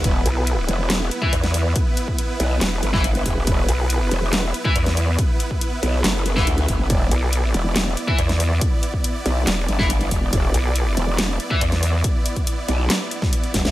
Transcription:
<<
  \new Staff \with { instrumentName = "Distorted electric guitar" } { \time 4/4 \key c \lydian \tempo 4 = 140 r2 r8. <e' b' e''>16 r4 | r2 r8. <e' b' e''>16 r4 | r2 r8. <e' b' e''>16 r4 | r2 r8. <e' b' e''>16 r4 |
r2 r8. <e' b' e''>16 r4 | r2 r8. <e' b' e''>16 r4 | r2 r8. <e' b' e''>16 r4 | r1 | }
  \new Staff \with { instrumentName = "Supersaw synth" } { \time 4/4 \key c \lydian << { b'1~ | b'1~ | b'1~ | b'1 |
d''1~ | d''1~ | d''1~ | d''1 | } \\ { <b e'>1~ | <b e'>1~ | <b e'>1~ | <b e'>1~ |
<b e'>1~ | <b e'>1~ | <b e'>1~ | <b e'>1 | } >> }
  \new Staff \with { instrumentName = "Wobble bass" } { \clef bass \time 4/4 \key c \lydian r8 b,,4 r4. e,4 | r2 e,,8 r4. | r8 b,,4 r4. e,4 | r1 |
r8 b,,4 r4. e,4 | r2 e,,8 r4. | r8 b,,4 r4. e,4 | r1 | }
  \new Staff \with { instrumentName = "Wobble bass" } { \clef bass \time 4/4 \key c \lydian e,,8 r4 e,,4 r4. | r4. b,,8 r8 g,,4 e,,8 | e,,8 r4 e,,4 r4. | r4. b,,8 fis,,4 d,8 fis,,8 |
e,,8 r4 e,,4 r4. | r4. b,,8 r8 g,,4 e,,8 | e,,8 r4 e,,4 r4. | r4. b,,8 r4. e,,16 d,16 | }
  \new DrumStaff \with { instrumentName = "Drums" } \drummode { \time 4/4 <hh bd>8 hh8 hh8 hh8 <hc hh sn>8 hh16 bd16 hh16 <hh sn>16 hho8 | <hh bd>8 hh16 bd16 hh8 hh8 <hc hh sn>8 hh16 <bd sn>16 hh16 hh16 <hho bd>8 | <hh bd>8 hh8 hh8 hh8 <hc hh sn>8 hh16 bd16 hh16 <hh sn>16 hho8 | <hh bd>8 hh16 bd16 hh8 hh8 <hc hh sn>8 hh16 <bd sn>16 hh16 hh16 <hho bd>8 |
<hh bd>8 hh8 hh8 hh8 <hc hh sn>8 hh16 bd16 hh16 <hh sn>16 hho8 | <hh bd>8 hh16 bd16 hh8 hh8 <hc hh sn>8 hh16 <bd sn>16 hh16 hh16 <hho bd>8 | <hh bd>8 hh8 hh8 hh8 <hc hh sn>8 hh16 bd16 hh16 <hh sn>16 hho8 | <hh bd>8 hh16 <hh bd>16 hh8 hh8 <hc hh sn>8 hh16 <bd sn>16 hh16 hh16 <hho bd sn>16 sn16 | }
>>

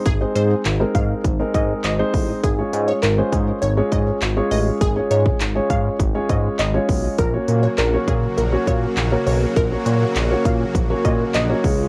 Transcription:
<<
  \new Staff \with { instrumentName = "Synth pluck" } { \time 4/4 \key ges \lydian \tempo 4 = 101 aes'8 c''8 r8 f''8. r16 ees''16 r16 ees''8. r16 | aes'8 r16 des''16 bes'8 aes'16 r16 des''8 ees''16 r8. ees''16 r16 | aes'8 des''8 r8 f''8. r16 ees''16 r16 ees''8. r16 | bes'8 r16 des''16 bes'8 aes'16 r16 bes'8 des''16 r8. des''16 r16 |
bes'8 des''8 r8 f''8. r16 ees''16 r16 ees''8. r16 | }
  \new Staff \with { instrumentName = "Grand piano" } { \time 4/4 \key ges \lydian r16 <aes c' ees' aes' c''>8. r16 <aes c' ees' aes' bes'>8. r16 <aes c' ees' aes' bes'>8. r16 <aes c' ees' aes' c''>8. | r16 <aes des' f' aes' des''>8. r16 <aes des' f' aes' c''>8. r16 <aes des' f' aes' des''>8. r16 <aes des' f' aes' des''>8. | r16 <aes des' f' aes' des''>8. r16 <aes des' f' aes' des''>8. r16 <aes des' f' aes' des''>8. r16 <aes des' f' aes' des''>8. | r16 <bes des' ges' bes' des''>8. r16 <bes des' ges' bes' des''>8. r16 <bes des' ges' bes' des''>8. r16 <bes des' ges' bes' des''>8. |
r16 <bes des' ges' bes' des''>8. r16 <bes des' ges' bes' des''>8. r16 <bes des' ges' bes' des''>8. r16 <bes des' ges' bes' des''>16 <aes des' f' aes' des''>8 | }
  \new Staff \with { instrumentName = "Supersaw synth" } { \clef bass \time 4/4 \key ges \lydian r1 | r1 | r1 | <des ges bes ges'>1~ |
<des ges bes ges'>2.~ <des ges bes ges'>8 <des f aes f'>8 | }
  \new Staff \with { instrumentName = "Analog synth bass" } { \clef bass \time 4/4 \key ges \lydian aes,,8 aes,8 aes,,8 aes,8 aes,,8 aes,8 aes,,8 a,,8 | aes,,8 aes,8 aes,,8 aes,8 aes,,8 aes,8 aes,,8 a,,8 | aes,,8 aes,8 aes,,8 aes,8 aes,,8 aes,8 aes,,8 ces,8 | bes,,8 bes,8 bes,,8 bes,8 bes,,8 bes,8 bes,,8 ces,8 |
bes,,8 bes,8 bes,,8 bes,8 bes,,8 bes,8 bes,,8 des,8 | }
  \new DrumStaff \with { instrumentName = "Drums" } \drummode { \time 4/4 <hh bd>8 hh8 <hc hh>8 <hh bd>8 <hh bd>8 <hh bd>8 <hc hh>8 <hho bd>8 | <hh bd>8 hh8 <hc hh>8 <hh bd>8 hh8 <hh bd>8 <hc hh>8 hho8 | <hh bd>8 hh16 bd16 <hc hh>8 <hh bd>8 <hh bd>8 <hh bd>8 <hc hh>8 <hho bd>8 | <hh bd>8 hh8 <hc hh>8 <hh bd>8 hh8 <hh bd>8 <hc hh>8 hho8 |
<hh bd>8 hh8 <hc hh>8 <hh bd>8 <hh bd>8 <hh bd>8 <hc hh>8 <hho bd>8 | }
>>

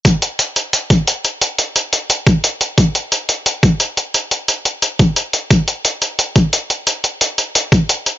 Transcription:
\new DrumStaff \with { instrumentName = "Drums" } \drummode { \time 4/4 \tempo 4 = 176 <hh bd>8 hh8 hh8 hh8 hh8 <hh bd>8 hh8 hh8 | hh8 hh8 hh8 hh8 hh8 <hh bd>8 hh8 hh8 | <hh bd>8 hh8 hh8 hh8 hh8 <hh bd>8 hh8 hh8 | hh8 hh8 hh8 hh8 hh8 <hh bd>8 hh8 hh8 |
<hh bd>8 hh8 hh8 hh8 hh8 <hh bd>8 hh8 hh8 | hh8 hh8 hh8 hh8 hh8 <hh bd>8 hh8 hh8 | }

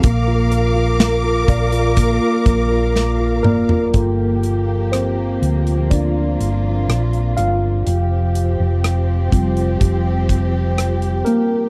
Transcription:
<<
  \new Staff \with { instrumentName = "String section" } { \time 4/4 \key g \minor \tempo 4 = 62 << { d'''1 | g'2 f'2 | g'1 | } \\ { <bes' f''>1 | <f bes>1 | <f c'>1 | } >> }
  \new Staff \with { instrumentName = "Tine electric piano" } { \time 4/4 \key g \minor << { r2. r8 <bes bes'>8~ | <bes bes'>8 r8 <c' c''>4 <d' d''>4. <f' f''>8~ | <f' f''>8 r2. <bes bes'>8 | } \\ { bes16 f'16 bes'16 f'16 bes'16 f'16 d''16 f'16 bes16 f'16 bes'16 f'16 bes'16 f'16 d''16 f'16 | <bes f' a'>4. r2 r8 | r4. <g c' f'>8. r4. r16 | } >> }
  \new Staff \with { instrumentName = "Fingered electric bass" } { \clef bass \time 4/4 \key g \minor bes,,4. bes,,8. r16 bes,,4 f,,8 | g,,4. d,4 g,,8 bes,,8 g,,8 | f,,8. f,,8. f,,8 f,,4. r8 | }
  \new DrumStaff \with { instrumentName = "Drums" } \drummode { \time 4/4 <hh bd>8 hh8 <hh sn>8 <hh bd>16 hh16 <hh bd>8 <hh bd>8 sn8 toml16 tomfh16 | <hh bd>8 hh8 <hh ss>8 hh16 hh16 <hh bd>8 hh8 <hh ss>16 hh16 <hh ss>8 | hh8 hh8 <hh ss>8 <hh bd>16 hh16 <hh bd>8 <hh bd>8 <hh ss>16 hh16 <hh ss>8 | }
>>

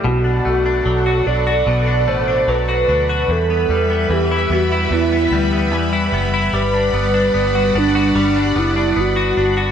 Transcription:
<<
  \new Staff \with { instrumentName = "String machine" } { \time 4/4 \key b \phrygian \tempo 4 = 74 << { b''1~ | b''1~ | b''1 | } \\ { <a' d'' fis''>1 | <g b' e''>1 | <g d'' fis''>1 | } >> }
  \new Staff \with { instrumentName = "Soft synth lead" } { \time 4/4 \key b \phrygian fis'4. d''4 c''8 b'4 | a'4 g'8 fis'8 e'4. r8 | b'4. d'4 e'8 fis'4 | }
  \new Staff \with { instrumentName = "Clean electric guitar" } { \time 4/4 \key b \phrygian b,16 d'16 a16 d'16 fis16 fis'16 d'16 fis'16 b,16 d'16 a16 d'16 fis16 fis'16 d'16 fis'16 | e,16 b16 g16 b16 e16 e'16 b16 e'16 e,16 b16 g16 b16 e16 e'16 b16 e'16 | g16 d'16 b16 d'16 b16 fis'16 d'16 fis'16 g16 d'16 b16 d'16 b16 fis'16 d'16 fis'16 | }
  \new Staff \with { instrumentName = "Fingered electric bass" } { \clef bass \time 4/4 \key b \phrygian b,,8 b,,8 b,,8 b,,8 b,,8 a,,8 b,,8 d,8 | e,8 e,8 e,8 e,8 e,8 d,8 e,8 fis,,8 | g,,8 g,,8 g,,8 g,,8 g,,8 fis,,8 g,,8 g,,8 | }
>>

